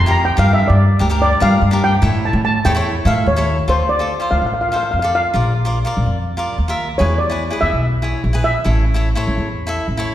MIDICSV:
0, 0, Header, 1, 4, 480
1, 0, Start_track
1, 0, Key_signature, -1, "minor"
1, 0, Tempo, 413223
1, 447, Time_signature, 4, 2, 24, 8
1, 11784, End_track
2, 0, Start_track
2, 0, Title_t, "Steel pan"
2, 0, Program_c, 0, 114
2, 0, Note_on_c, 0, 84, 96
2, 127, Note_on_c, 0, 82, 99
2, 131, Note_off_c, 0, 84, 0
2, 276, Note_off_c, 0, 82, 0
2, 291, Note_on_c, 0, 79, 92
2, 454, Note_off_c, 0, 79, 0
2, 457, Note_on_c, 0, 77, 105
2, 616, Note_off_c, 0, 77, 0
2, 620, Note_on_c, 0, 76, 86
2, 778, Note_off_c, 0, 76, 0
2, 785, Note_on_c, 0, 74, 78
2, 1222, Note_off_c, 0, 74, 0
2, 1415, Note_on_c, 0, 74, 93
2, 1651, Note_on_c, 0, 77, 87
2, 1657, Note_off_c, 0, 74, 0
2, 2136, Note_on_c, 0, 79, 99
2, 2141, Note_off_c, 0, 77, 0
2, 2618, Note_on_c, 0, 81, 78
2, 2623, Note_off_c, 0, 79, 0
2, 2829, Note_off_c, 0, 81, 0
2, 2843, Note_on_c, 0, 81, 94
2, 2951, Note_off_c, 0, 81, 0
2, 3080, Note_on_c, 0, 79, 81
2, 3567, Note_on_c, 0, 77, 81
2, 3575, Note_off_c, 0, 79, 0
2, 3805, Note_on_c, 0, 73, 71
2, 3811, Note_off_c, 0, 77, 0
2, 4027, Note_off_c, 0, 73, 0
2, 4293, Note_on_c, 0, 72, 78
2, 4520, Note_on_c, 0, 74, 77
2, 4535, Note_off_c, 0, 72, 0
2, 5004, Note_on_c, 0, 77, 78
2, 5016, Note_off_c, 0, 74, 0
2, 5073, Note_off_c, 0, 77, 0
2, 5087, Note_on_c, 0, 77, 49
2, 5170, Note_off_c, 0, 77, 0
2, 5184, Note_on_c, 0, 77, 61
2, 5256, Note_off_c, 0, 77, 0
2, 5270, Note_on_c, 0, 77, 56
2, 5343, Note_off_c, 0, 77, 0
2, 5356, Note_on_c, 0, 77, 60
2, 5431, Note_off_c, 0, 77, 0
2, 5445, Note_on_c, 0, 77, 47
2, 5520, Note_off_c, 0, 77, 0
2, 5534, Note_on_c, 0, 77, 58
2, 5596, Note_off_c, 0, 77, 0
2, 5610, Note_on_c, 0, 77, 51
2, 5691, Note_off_c, 0, 77, 0
2, 5705, Note_on_c, 0, 77, 58
2, 5787, Note_off_c, 0, 77, 0
2, 5801, Note_on_c, 0, 77, 55
2, 5884, Note_off_c, 0, 77, 0
2, 5984, Note_on_c, 0, 77, 80
2, 7369, Note_off_c, 0, 77, 0
2, 8108, Note_on_c, 0, 73, 77
2, 8345, Note_on_c, 0, 74, 67
2, 8365, Note_off_c, 0, 73, 0
2, 8837, Note_on_c, 0, 76, 87
2, 8851, Note_off_c, 0, 74, 0
2, 9792, Note_off_c, 0, 76, 0
2, 9806, Note_on_c, 0, 76, 84
2, 11200, Note_off_c, 0, 76, 0
2, 11784, End_track
3, 0, Start_track
3, 0, Title_t, "Cavaquinho"
3, 0, Program_c, 1, 24
3, 72, Note_on_c, 1, 64, 66
3, 82, Note_on_c, 1, 67, 66
3, 95, Note_on_c, 1, 70, 74
3, 296, Note_off_c, 1, 64, 0
3, 301, Note_off_c, 1, 67, 0
3, 307, Note_off_c, 1, 70, 0
3, 428, Note_on_c, 1, 62, 70
3, 441, Note_on_c, 1, 67, 66
3, 455, Note_on_c, 1, 70, 73
3, 869, Note_off_c, 1, 62, 0
3, 875, Note_off_c, 1, 67, 0
3, 883, Note_off_c, 1, 70, 0
3, 1154, Note_on_c, 1, 62, 77
3, 1164, Note_on_c, 1, 67, 70
3, 1177, Note_on_c, 1, 70, 83
3, 1232, Note_off_c, 1, 62, 0
3, 1237, Note_off_c, 1, 67, 0
3, 1244, Note_off_c, 1, 70, 0
3, 1272, Note_on_c, 1, 62, 70
3, 1280, Note_on_c, 1, 67, 67
3, 1290, Note_on_c, 1, 70, 80
3, 1495, Note_off_c, 1, 62, 0
3, 1499, Note_off_c, 1, 67, 0
3, 1503, Note_off_c, 1, 70, 0
3, 1630, Note_on_c, 1, 62, 67
3, 1641, Note_on_c, 1, 67, 62
3, 1654, Note_on_c, 1, 70, 81
3, 1853, Note_off_c, 1, 62, 0
3, 1859, Note_off_c, 1, 67, 0
3, 1865, Note_off_c, 1, 70, 0
3, 1987, Note_on_c, 1, 62, 76
3, 2004, Note_on_c, 1, 67, 61
3, 2012, Note_on_c, 1, 70, 77
3, 2212, Note_off_c, 1, 62, 0
3, 2220, Note_off_c, 1, 67, 0
3, 2224, Note_off_c, 1, 70, 0
3, 2345, Note_on_c, 1, 64, 68
3, 2355, Note_on_c, 1, 69, 69
3, 2367, Note_on_c, 1, 73, 83
3, 2786, Note_off_c, 1, 64, 0
3, 2791, Note_off_c, 1, 69, 0
3, 2797, Note_off_c, 1, 73, 0
3, 3075, Note_on_c, 1, 64, 69
3, 3087, Note_on_c, 1, 69, 70
3, 3096, Note_on_c, 1, 73, 84
3, 3151, Note_off_c, 1, 64, 0
3, 3157, Note_off_c, 1, 69, 0
3, 3162, Note_off_c, 1, 73, 0
3, 3190, Note_on_c, 1, 64, 71
3, 3203, Note_on_c, 1, 69, 67
3, 3213, Note_on_c, 1, 73, 88
3, 3412, Note_off_c, 1, 64, 0
3, 3418, Note_off_c, 1, 69, 0
3, 3423, Note_off_c, 1, 73, 0
3, 3545, Note_on_c, 1, 64, 61
3, 3558, Note_on_c, 1, 69, 65
3, 3571, Note_on_c, 1, 76, 83
3, 3770, Note_off_c, 1, 64, 0
3, 3776, Note_off_c, 1, 69, 0
3, 3783, Note_off_c, 1, 76, 0
3, 3908, Note_on_c, 1, 64, 72
3, 3919, Note_on_c, 1, 69, 62
3, 3929, Note_on_c, 1, 73, 71
3, 4131, Note_off_c, 1, 64, 0
3, 4137, Note_off_c, 1, 69, 0
3, 4142, Note_off_c, 1, 73, 0
3, 4272, Note_on_c, 1, 65, 54
3, 4279, Note_on_c, 1, 69, 53
3, 4289, Note_on_c, 1, 74, 58
3, 4493, Note_off_c, 1, 65, 0
3, 4497, Note_off_c, 1, 69, 0
3, 4502, Note_off_c, 1, 74, 0
3, 4637, Note_on_c, 1, 65, 53
3, 4647, Note_on_c, 1, 69, 50
3, 4662, Note_on_c, 1, 74, 60
3, 4784, Note_off_c, 1, 65, 0
3, 4788, Note_off_c, 1, 69, 0
3, 4796, Note_off_c, 1, 74, 0
3, 4876, Note_on_c, 1, 65, 53
3, 4885, Note_on_c, 1, 69, 50
3, 4898, Note_on_c, 1, 72, 56
3, 5239, Note_off_c, 1, 65, 0
3, 5244, Note_off_c, 1, 69, 0
3, 5250, Note_off_c, 1, 72, 0
3, 5480, Note_on_c, 1, 65, 57
3, 5492, Note_on_c, 1, 69, 52
3, 5502, Note_on_c, 1, 72, 59
3, 5698, Note_off_c, 1, 65, 0
3, 5704, Note_off_c, 1, 69, 0
3, 5709, Note_off_c, 1, 72, 0
3, 5834, Note_on_c, 1, 65, 60
3, 5851, Note_on_c, 1, 69, 50
3, 5859, Note_on_c, 1, 74, 68
3, 6055, Note_off_c, 1, 65, 0
3, 6064, Note_off_c, 1, 69, 0
3, 6068, Note_off_c, 1, 74, 0
3, 6198, Note_on_c, 1, 65, 54
3, 6210, Note_on_c, 1, 70, 52
3, 6220, Note_on_c, 1, 74, 64
3, 6417, Note_off_c, 1, 65, 0
3, 6423, Note_off_c, 1, 70, 0
3, 6429, Note_off_c, 1, 74, 0
3, 6563, Note_on_c, 1, 65, 66
3, 6576, Note_on_c, 1, 70, 58
3, 6582, Note_on_c, 1, 74, 67
3, 6708, Note_off_c, 1, 65, 0
3, 6714, Note_off_c, 1, 70, 0
3, 6718, Note_off_c, 1, 74, 0
3, 6792, Note_on_c, 1, 65, 63
3, 6806, Note_on_c, 1, 70, 62
3, 6818, Note_on_c, 1, 74, 77
3, 7159, Note_off_c, 1, 65, 0
3, 7165, Note_off_c, 1, 70, 0
3, 7171, Note_off_c, 1, 74, 0
3, 7400, Note_on_c, 1, 65, 61
3, 7410, Note_on_c, 1, 70, 63
3, 7422, Note_on_c, 1, 74, 77
3, 7619, Note_off_c, 1, 65, 0
3, 7624, Note_off_c, 1, 70, 0
3, 7630, Note_off_c, 1, 74, 0
3, 7761, Note_on_c, 1, 65, 64
3, 7775, Note_on_c, 1, 70, 71
3, 7781, Note_on_c, 1, 76, 75
3, 7980, Note_off_c, 1, 65, 0
3, 7987, Note_off_c, 1, 70, 0
3, 7990, Note_off_c, 1, 76, 0
3, 8118, Note_on_c, 1, 64, 61
3, 8126, Note_on_c, 1, 68, 58
3, 8140, Note_on_c, 1, 71, 61
3, 8339, Note_off_c, 1, 64, 0
3, 8342, Note_off_c, 1, 68, 0
3, 8350, Note_off_c, 1, 71, 0
3, 8475, Note_on_c, 1, 64, 56
3, 8492, Note_on_c, 1, 68, 51
3, 8501, Note_on_c, 1, 71, 61
3, 8625, Note_off_c, 1, 64, 0
3, 8633, Note_off_c, 1, 68, 0
3, 8638, Note_off_c, 1, 71, 0
3, 8718, Note_on_c, 1, 64, 59
3, 8727, Note_on_c, 1, 68, 52
3, 8745, Note_on_c, 1, 71, 62
3, 9082, Note_off_c, 1, 64, 0
3, 9087, Note_off_c, 1, 68, 0
3, 9096, Note_off_c, 1, 71, 0
3, 9318, Note_on_c, 1, 64, 57
3, 9326, Note_on_c, 1, 68, 49
3, 9340, Note_on_c, 1, 73, 62
3, 9539, Note_off_c, 1, 64, 0
3, 9543, Note_off_c, 1, 68, 0
3, 9550, Note_off_c, 1, 73, 0
3, 9676, Note_on_c, 1, 64, 59
3, 9689, Note_on_c, 1, 68, 55
3, 9696, Note_on_c, 1, 71, 65
3, 9898, Note_off_c, 1, 64, 0
3, 9904, Note_off_c, 1, 68, 0
3, 9908, Note_off_c, 1, 71, 0
3, 10042, Note_on_c, 1, 64, 57
3, 10051, Note_on_c, 1, 69, 53
3, 10062, Note_on_c, 1, 73, 58
3, 10261, Note_off_c, 1, 64, 0
3, 10265, Note_off_c, 1, 69, 0
3, 10270, Note_off_c, 1, 73, 0
3, 10389, Note_on_c, 1, 64, 68
3, 10401, Note_on_c, 1, 69, 60
3, 10411, Note_on_c, 1, 73, 72
3, 10542, Note_off_c, 1, 64, 0
3, 10548, Note_off_c, 1, 69, 0
3, 10553, Note_off_c, 1, 73, 0
3, 10634, Note_on_c, 1, 64, 63
3, 10644, Note_on_c, 1, 69, 60
3, 10654, Note_on_c, 1, 73, 78
3, 11000, Note_off_c, 1, 64, 0
3, 11005, Note_off_c, 1, 69, 0
3, 11010, Note_off_c, 1, 73, 0
3, 11230, Note_on_c, 1, 64, 65
3, 11243, Note_on_c, 1, 69, 60
3, 11253, Note_on_c, 1, 76, 78
3, 11454, Note_off_c, 1, 64, 0
3, 11461, Note_off_c, 1, 69, 0
3, 11466, Note_off_c, 1, 76, 0
3, 11587, Note_on_c, 1, 64, 72
3, 11602, Note_on_c, 1, 69, 63
3, 11612, Note_on_c, 1, 73, 76
3, 11784, Note_off_c, 1, 64, 0
3, 11784, Note_off_c, 1, 69, 0
3, 11784, Note_off_c, 1, 73, 0
3, 11784, End_track
4, 0, Start_track
4, 0, Title_t, "Upright bass"
4, 0, Program_c, 2, 32
4, 0, Note_on_c, 2, 41, 86
4, 339, Note_off_c, 2, 41, 0
4, 439, Note_on_c, 2, 43, 100
4, 722, Note_off_c, 2, 43, 0
4, 807, Note_on_c, 2, 43, 95
4, 1086, Note_off_c, 2, 43, 0
4, 1171, Note_on_c, 2, 38, 93
4, 1541, Note_off_c, 2, 38, 0
4, 1643, Note_on_c, 2, 43, 99
4, 1830, Note_off_c, 2, 43, 0
4, 1876, Note_on_c, 2, 43, 87
4, 2252, Note_off_c, 2, 43, 0
4, 2350, Note_on_c, 2, 45, 100
4, 2635, Note_off_c, 2, 45, 0
4, 2708, Note_on_c, 2, 45, 101
4, 2993, Note_off_c, 2, 45, 0
4, 3078, Note_on_c, 2, 40, 99
4, 3452, Note_off_c, 2, 40, 0
4, 3545, Note_on_c, 2, 45, 94
4, 3738, Note_off_c, 2, 45, 0
4, 3791, Note_on_c, 2, 39, 89
4, 4168, Note_off_c, 2, 39, 0
4, 4272, Note_on_c, 2, 38, 71
4, 4836, Note_off_c, 2, 38, 0
4, 5010, Note_on_c, 2, 38, 75
4, 5101, Note_off_c, 2, 38, 0
4, 5131, Note_on_c, 2, 33, 64
4, 5594, Note_off_c, 2, 33, 0
4, 5727, Note_on_c, 2, 41, 69
4, 6099, Note_off_c, 2, 41, 0
4, 6206, Note_on_c, 2, 34, 79
4, 6765, Note_off_c, 2, 34, 0
4, 6933, Note_on_c, 2, 34, 78
4, 7024, Note_off_c, 2, 34, 0
4, 7039, Note_on_c, 2, 41, 69
4, 7508, Note_off_c, 2, 41, 0
4, 7644, Note_on_c, 2, 39, 72
4, 8018, Note_off_c, 2, 39, 0
4, 8133, Note_on_c, 2, 40, 88
4, 8690, Note_off_c, 2, 40, 0
4, 8850, Note_on_c, 2, 40, 76
4, 8942, Note_off_c, 2, 40, 0
4, 8969, Note_on_c, 2, 35, 68
4, 9434, Note_off_c, 2, 35, 0
4, 9569, Note_on_c, 2, 34, 76
4, 9941, Note_off_c, 2, 34, 0
4, 10053, Note_on_c, 2, 33, 86
4, 10610, Note_off_c, 2, 33, 0
4, 10770, Note_on_c, 2, 33, 72
4, 10863, Note_off_c, 2, 33, 0
4, 10893, Note_on_c, 2, 40, 64
4, 11356, Note_off_c, 2, 40, 0
4, 11475, Note_on_c, 2, 33, 69
4, 11784, Note_off_c, 2, 33, 0
4, 11784, End_track
0, 0, End_of_file